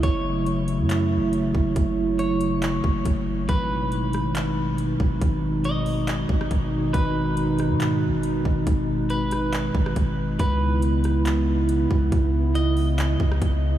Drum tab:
HH |x---x-x-x---x---|x---x-x-x---x---|x---x-x-x---x---|x---x-o-x---x---|
CP |--------x-------|--------x-------|--------x-------|--------x-------|
SD |----------------|----------------|------r---------|-----------r----|
BD |o-------------o-|o---------o-o---|o-------------o-|o---------o-o---|

HH |x---x-x-x---x---|x---x-x-x---x---|x---x-x-x---x---|x---x-o-x---x---|
CP |--------x-------|--------x-------|--------x-------|--------x-------|
SD |------r---------|------r----r----|------r---------|-----------r----|
BD |o-------------o-|o---------o-o---|o-------------o-|o---------o-o---|